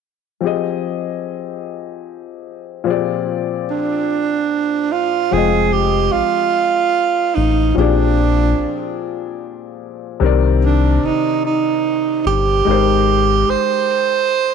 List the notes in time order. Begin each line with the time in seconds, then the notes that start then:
0.41 F3 C4 G4
0.45 G#4 D#5
2.84 A#2 F3 C4 G4
2.89 G#4 D5
3.70 D4
4.92 F4
5.31 F1 F3 C4 G#4 G5
5.36 G#3 D#5
5.73 G4
6.12 A1 F4
7.35 A1 D#4
7.74 A#1 A#2 F3 C4 D4 G4
7.80 G#4 D5
8.58 A#1
10.20 C2 C3 D#3 C4
10.24 A#4 D5
10.65 D4
11.03 G1 D#4
11.45 D#4
12.26 G1 G4
12.65 G#1 G#3 D#4 G5
12.69 A#4 C5
13.48 G#1 C5